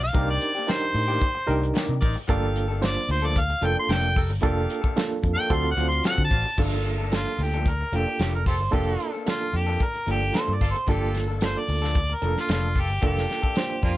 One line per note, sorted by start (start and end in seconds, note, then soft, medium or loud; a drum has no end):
0.01 0.13 B1 medium
0.01 0.29 F5 medium
0.01 muted clean electric guitar stroke soft
0.13 0.37 C2 loud
0.13 0.31 D#3 medium
0.13 0.31 A#3 medium
0.13 0.68 C4 medium
0.13 0.52 D4 medium
0.13 0.32 D4 medium
0.13 0.52 D#4 medium
0.13 0.52 G4 medium
0.13 0.32 G4 medium
0.13 0.68 A#4 medium
0.13 0.52 A#4 medium
0.13 0.68 C5 medium
0.13 0.68 D5 medium
0.13 kick loud
0.13 closed hi-hat medium
0.30 0.73 D5 loud
0.41 muted clean electric guitar stroke soft
0.41 closed hi-hat medium
0.55 0.68 A#3 medium
0.55 0.68 D4 medium
0.55 0.68 G4 medium
0.55 closed hi-hat soft
0.67 1.23 D4 medium
0.67 1.23 D#4 medium
0.67 1.23 G4 medium
0.67 1.23 A#4 medium
0.67 1.74 C5 loud
0.67 muted clean electric guitar stroke soft
0.67 snare loud
0.67 closed hi-hat medium
0.82 muted clean electric guitar stroke soft
0.94 1.17 A2 loud
0.94 muted clean electric guitar stroke soft
0.94 open hi-hat medium
1.08 1.25 D#3 medium
1.08 1.25 A#3 medium
1.08 1.25 D4 medium
1.08 1.24 G4 medium
1.22 kick medium
1.22 closed hi-hat medium
1.35 muted clean electric guitar stroke medium
1.47 1.71 C2 loud
1.47 1.62 D#3 medium
1.47 1.63 A#3 medium
1.47 2.03 D4 medium
1.47 1.62 D4 medium
1.47 2.03 D#4 medium
1.47 2.03 G4 medium
1.47 1.61 G4 medium
1.47 2.03 A#4 loud
1.47 closed hi-hat medium
1.62 muted clean electric guitar stroke medium
1.62 closed hi-hat soft
1.74 1.91 D#3 loud
1.74 1.92 A#3 medium
1.74 1.92 D4 loud
1.74 1.92 G4 loud
1.74 snare loud
1.74 closed hi-hat medium
1.89 2.00 C3 medium
2.01 2.14 A1 loud
2.01 2.16 D#4 loud
2.01 2.16 A#4 medium
2.01 2.16 C5 medium
2.01 2.16 D5 loud
2.01 muted clean electric guitar stroke soft
2.01 kick medium
2.01 open hi-hat medium
2.16 muted clean electric guitar stroke medium
2.27 2.96 G1 loud
2.27 2.45 F3 loud
2.27 2.82 A#3 loud
2.27 2.46 A#3 loud
2.27 2.66 A#3 loud
2.27 2.66 D4 medium
2.27 2.46 D4 loud
2.27 2.66 F4 medium
2.27 2.82 G4 medium
2.27 2.82 A4 medium
2.27 2.67 A4 loud
2.27 2.46 A4 loud
2.27 2.82 F5 loud
2.27 kick loud
2.27 closed hi-hat medium
2.55 muted clean electric guitar stroke soft
2.55 closed hi-hat medium
2.68 2.81 A#3 medium
2.68 2.82 D4 medium
2.68 2.82 A4 medium
2.81 3.37 A#3 medium
2.81 3.37 D4 medium
2.81 3.37 F4 medium
2.81 3.37 C5 medium
2.81 muted clean electric guitar stroke soft
2.81 snare loud
2.81 closed hi-hat loud
2.85 3.10 D5 medium
2.97 muted clean electric guitar stroke medium
3.09 3.53 D2 loud
3.09 3.28 C5 medium
3.09 muted clean electric guitar stroke soft
3.09 open hi-hat medium
3.22 3.40 F3 medium
3.22 3.39 A#3 medium
3.22 3.39 D4 medium
3.22 3.38 A4 medium
3.22 3.41 D5 medium
3.22 closed hi-hat soft
3.36 3.67 F5 loud
3.36 kick loud
3.36 closed hi-hat loud
3.50 muted clean electric guitar stroke medium
3.50 closed hi-hat soft
3.61 3.74 F1 medium
3.61 3.76 F3 medium
3.61 4.18 A#3 medium
3.61 3.77 A#3 medium
3.61 4.18 D4 medium
3.61 3.76 D4 medium
3.61 4.18 F4 medium
3.61 4.18 A4 medium
3.61 3.75 A4 medium
3.61 closed hi-hat medium
3.65 3.77 G5 loud
3.76 3.93 C6 loud
3.76 muted clean electric guitar stroke medium
3.89 4.29 F1 loud
3.89 4.06 F3 medium
3.89 4.06 A#3 loud
3.89 4.07 D4 medium
3.89 4.07 A4 medium
3.89 4.17 G5 loud
3.89 snare loud
3.89 closed hi-hat medium
4.16 4.31 G4 medium
4.16 4.31 A4 medium
4.16 4.31 A#4 medium
4.16 4.31 G5 medium
4.16 muted clean electric guitar stroke soft
4.16 kick medium
4.16 open hi-hat medium
4.29 4.40 G1 loud
4.29 muted clean electric guitar stroke medium
4.41 4.65 F1 loud
4.41 4.59 F3 medium
4.41 4.80 A#3 loud
4.41 4.59 A#3 loud
4.41 4.97 A#3 medium
4.41 4.80 D4 medium
4.41 4.60 D4 loud
4.41 4.80 F4 medium
4.41 4.97 G4 loud
4.41 4.80 A4 loud
4.41 4.97 A4 medium
4.41 4.60 A4 medium
4.41 4.97 F5 loud
4.41 kick loud
4.41 closed hi-hat medium
4.69 muted clean electric guitar stroke soft
4.69 closed hi-hat medium
4.82 4.95 A#3 medium
4.82 4.96 D4 medium
4.82 4.96 A4 medium
4.82 kick medium
4.82 closed hi-hat soft
4.96 5.50 A#3 medium
4.96 5.50 D4 medium
4.96 5.49 F4 medium
4.96 5.50 A4 medium
4.96 muted clean electric guitar stroke medium
4.96 snare loud
4.96 closed hi-hat medium
5.10 muted clean electric guitar stroke medium
5.23 5.35 F2 loud
5.23 muted clean electric guitar stroke soft
5.23 kick medium
5.23 closed hi-hat medium
5.35 5.49 F3 medium
5.35 5.50 A#3 medium
5.35 5.50 D4 medium
5.35 5.50 A4 medium
5.35 5.55 G5 loud
5.48 5.73 D2 loud
5.48 5.64 F#3 medium
5.48 5.72 C4 medium
5.48 5.64 C4 medium
5.48 5.72 F4 medium
5.48 5.64 F4 medium
5.48 5.72 F#4 medium
5.48 5.72 A4 medium
5.48 6.14 C5 medium
5.48 6.14 D5 medium
5.48 6.15 F5 medium
5.48 kick loud
5.48 closed hi-hat medium
5.52 5.63 A4 medium
5.52 5.69 C6 loud
5.64 muted clean electric guitar stroke medium
5.71 5.87 F#5 loud
5.76 5.99 D2 medium
5.76 5.91 F#3 medium
5.76 6.33 C4 medium
5.76 5.92 C4 medium
5.76 6.33 F4 medium
5.76 5.91 F4 medium
5.76 6.33 F#4 medium
5.76 5.90 A4 medium
5.76 6.33 C5 medium
5.76 closed hi-hat medium
5.88 6.05 C6 loud
5.88 muted clean electric guitar stroke soft
5.88 closed hi-hat soft
6.03 6.20 F#3 medium
6.03 6.21 C4 medium
6.03 6.21 F4 medium
6.03 6.22 A4 loud
6.03 6.23 F#5 loud
6.03 snare loud
6.03 closed hi-hat medium
6.18 6.29 D3 loud
6.18 kick medium
6.24 6.58 A5 loud
6.31 6.43 A1 loud
6.31 6.45 F#4 medium
6.31 6.45 C5 medium
6.31 6.45 D5 medium
6.31 6.45 F5 medium
6.31 muted clean electric guitar stroke soft
6.31 kick loud
6.31 open hi-hat medium
6.45 muted clean electric guitar stroke soft
6.57 7.25 G1 medium
6.57 6.74 F3 medium
6.57 7.11 A#3 medium
6.57 6.75 A#3 medium
6.57 6.96 A#3 medium
6.57 6.96 D4 medium
6.57 6.75 D4 medium
6.57 7.12 F4 medium
6.57 6.96 F4 medium
6.57 7.12 A4 medium
6.57 6.96 A4 medium
6.57 6.75 A4 medium
6.57 kick loud
6.57 crash medium
6.85 muted clean electric guitar stroke soft
6.85 closed hi-hat medium
6.98 7.11 A#3 soft
6.98 7.12 D4 medium
6.98 7.11 A4 medium
7.12 7.67 A#3 medium
7.12 7.67 D4 medium
7.12 7.67 F4 medium
7.12 7.45 F4 medium
7.12 7.67 A4 medium
7.12 muted clean electric guitar stroke soft
7.12 snare loud
7.12 closed hi-hat medium
7.27 muted clean electric guitar stroke soft
7.39 7.83 D2 medium
7.39 muted clean electric guitar stroke soft
7.39 open hi-hat medium
7.43 7.70 G4 medium
7.53 7.70 F3 medium
7.53 7.70 A#3 medium
7.53 7.69 D4 medium
7.53 7.69 A4 medium
7.53 closed hi-hat soft
7.66 7.97 A#4 medium
7.66 kick medium
7.66 closed hi-hat medium
7.81 muted clean electric guitar stroke soft
7.92 8.04 F1 medium
7.92 8.07 F3 medium
7.92 8.48 A#3 medium
7.92 8.07 A#3 medium
7.92 8.48 D4 medium
7.92 8.07 D4 medium
7.92 8.48 F4 medium
7.92 8.20 G4 medium
7.92 8.48 A4 medium
7.92 closed hi-hat medium
7.96 8.06 A4 medium
8.07 muted clean electric guitar stroke soft
8.19 8.61 F1 medium
8.19 8.36 F3 medium
8.19 8.36 A#3 medium
8.19 8.37 D4 medium
8.19 8.33 G4 medium
8.19 8.37 A4 medium
8.19 snare loud
8.19 closed hi-hat medium
8.34 8.46 A#4 medium
8.34 closed hi-hat soft
8.46 8.60 A#3 medium
8.46 8.60 F4 medium
8.46 8.55 G4 medium
8.46 8.60 A4 loud
8.46 8.73 C5 medium
8.46 muted clean electric guitar stroke soft
8.46 kick medium
8.46 open hi-hat medium
8.61 8.71 G1 medium
8.61 muted clean electric guitar stroke soft
8.71 8.95 F1 medium
8.71 8.90 F3 medium
8.71 9.09 A#3 medium
8.71 9.26 A#3 medium
8.71 8.90 A#3 medium
8.71 9.10 D4 medium
8.71 8.90 D4 medium
8.71 9.10 F4 medium
8.71 9.27 F4 medium
8.71 9.13 G4 medium
8.71 9.10 A4 loud
8.71 9.26 A4 loud
8.71 kick loud
8.71 closed hi-hat medium
8.76 8.91 A4 medium
8.87 closed hi-hat soft
9.00 muted clean electric guitar stroke soft
9.00 closed hi-hat medium
9.12 9.26 A#3 soft
9.12 9.26 D4 soft
9.12 9.26 A4 soft
9.26 9.82 A#3 medium
9.26 9.82 D4 medium
9.26 9.82 F4 medium
9.26 9.58 F4 medium
9.26 9.82 A4 medium
9.26 muted clean electric guitar stroke soft
9.26 snare loud
9.26 closed hi-hat medium
9.40 muted clean electric guitar stroke soft
9.40 closed hi-hat soft
9.53 9.76 F2 medium
9.53 9.85 G4 medium
9.53 muted clean electric guitar stroke soft
9.53 open hi-hat medium
9.67 9.84 F3 medium
9.67 9.84 A#3 medium
9.67 9.83 D4 medium
9.67 9.83 A4 medium
9.80 10.08 A#4 medium
9.80 kick medium
9.80 closed hi-hat medium
9.94 muted clean electric guitar stroke soft
9.94 closed hi-hat soft
10.06 10.29 G1 medium
10.06 10.21 F3 medium
10.06 10.62 A#3 medium
10.06 10.22 A#3 medium
10.06 10.62 D4 medium
10.06 10.21 D4 medium
10.06 10.63 F4 medium
10.06 10.63 A4 medium
10.06 10.20 A4 medium
10.06 closed hi-hat medium
10.11 10.35 G4 medium
10.21 muted clean electric guitar stroke soft
10.33 10.50 F3 medium
10.33 10.51 A#3 medium
10.33 10.51 D4 medium
10.33 10.51 A4 medium
10.33 10.55 C5 loud
10.33 snare loud
10.33 closed hi-hat medium
10.48 10.59 G2 medium
10.54 10.70 D5 medium
10.60 10.73 G1 medium
10.60 10.75 A#3 medium
10.60 10.75 F4 medium
10.60 10.75 A4 loud
10.60 muted clean electric guitar stroke soft
10.60 kick medium
10.60 open hi-hat medium
10.71 10.90 C5 medium
10.71 muted clean electric guitar stroke soft
10.75 closed hi-hat soft
10.87 11.55 G1 medium
10.87 11.04 F3 medium
10.87 11.04 A#3 medium
10.87 11.25 A#3 medium
10.87 11.42 A#3 medium
10.87 11.05 D4 medium
10.87 11.26 D4 medium
10.87 11.26 F4 medium
10.87 11.42 F4 medium
10.87 11.14 G4 medium
10.87 11.26 A4 medium
10.87 11.42 A4 loud
10.87 11.05 A4 loud
10.87 kick loud
10.87 closed hi-hat medium
11.14 muted clean electric guitar stroke soft
11.14 snare soft
11.14 closed hi-hat medium
11.28 11.41 A#3 soft
11.28 11.41 D4 soft
11.28 11.41 A4 medium
11.41 11.97 A#3 medium
11.41 11.97 D4 medium
11.41 11.97 F4 medium
11.41 11.97 A4 medium
11.41 muted clean electric guitar stroke soft
11.41 snare loud
11.41 closed hi-hat medium
11.45 11.61 C5 medium
11.57 12.16 D5 loud
11.57 muted clean electric guitar stroke soft
11.68 12.13 D2 medium
11.68 muted clean electric guitar stroke soft
11.68 open hi-hat medium
11.82 11.99 F3 medium
11.82 11.99 A#3 medium
11.82 11.98 D4 medium
11.82 11.98 A4 medium
11.82 snare soft
11.82 closed hi-hat soft
11.95 kick medium
11.95 closed hi-hat medium
12.10 muted clean electric guitar stroke soft
12.14 12.38 A#4 medium
12.22 12.34 F1 medium
12.22 12.36 F3 medium
12.22 12.77 A#3 medium
12.22 12.37 A#3 medium
12.22 12.77 D4 medium
12.22 12.36 D4 medium
12.22 12.78 F4 medium
12.22 12.77 A4 medium
12.22 12.35 A4 medium
12.22 closed hi-hat medium
12.36 muted clean electric guitar stroke soft
12.36 snare soft
12.40 12.50 F4 medium
12.49 12.90 F1 loud
12.49 12.66 F3 medium
12.49 12.66 A#3 medium
12.49 12.67 D4 medium
12.49 12.67 A4 medium
12.49 snare loud
12.49 closed hi-hat medium
12.53 12.82 F4 medium
12.63 closed hi-hat soft
12.74 12.89 A#3 medium
12.74 12.89 F4 medium
12.74 12.89 A4 medium
12.74 muted clean electric guitar stroke soft
12.74 kick medium
12.74 open hi-hat medium
12.80 13.04 G4 medium
12.90 13.01 G1 medium
12.90 muted clean electric guitar stroke soft
13.01 13.25 F1 medium
13.01 13.19 F3 medium
13.01 13.56 A#3 medium
13.01 13.19 A#3 medium
13.01 13.40 A#3 medium
13.01 13.40 D4 medium
13.01 13.20 D4 medium
13.01 13.55 F4 medium
13.01 13.40 F4 medium
13.01 13.56 A4 medium
13.01 13.40 A4 medium
13.01 13.20 A4 medium
13.01 kick loud
13.01 closed hi-hat medium
13.06 13.97 G4 loud
13.17 snare soft
13.17 closed hi-hat soft
13.29 muted clean electric guitar stroke soft
13.29 snare soft
13.29 closed hi-hat medium
13.42 13.55 A#3 soft
13.42 13.56 D4 medium
13.42 13.56 A4 medium
13.42 kick medium
13.55 13.97 A#3 medium
13.55 13.97 D4 medium
13.55 13.97 F4 medium
13.55 13.97 C5 medium
13.55 muted clean electric guitar stroke soft
13.55 snare loud
13.55 closed hi-hat medium
13.70 muted clean electric guitar stroke soft
13.70 closed hi-hat soft
13.83 13.97 F2 loud
13.83 13.91 A#3 medium
13.83 13.92 D4 medium
13.83 13.97 F4 medium
13.83 muted clean electric guitar stroke soft
13.83 kick medium
13.83 closed hi-hat medium